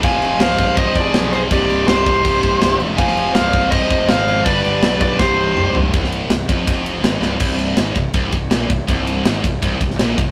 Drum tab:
CC |x-x-x-x-x-x-x-x-|x-x-x-x-x-x-x-x-|x-x-x-x-x-x-x-x-|x-x-x-x---------|
RD |----------------|----------------|----------------|----------------|
SD |----oo------o---|----o-------o---|-o--o-------o---|----o---o-------|
T2 |----------------|----------------|----------------|------------o---|
FT |----------------|----------------|----------------|--------------o-|
BD |o-----o-o-o-----|o-----o-o-o-----|o-----o-o-o-----|o-----o-o-------|

CC |----------------|x---------------|----------------|
RD |x-x-x-x-x-x-x---|--x-x-x-x-x-x-x-|x-x-x-x-x-x-x-x-|
SD |-o--o-------o-o-|----o-------o---|----o------oo---|
T2 |----------------|----------------|----------------|
FT |----------------|----------------|----------------|
BD |o-----o-o-------|o-----o-o-o---o-|o-----o-o-o---o-|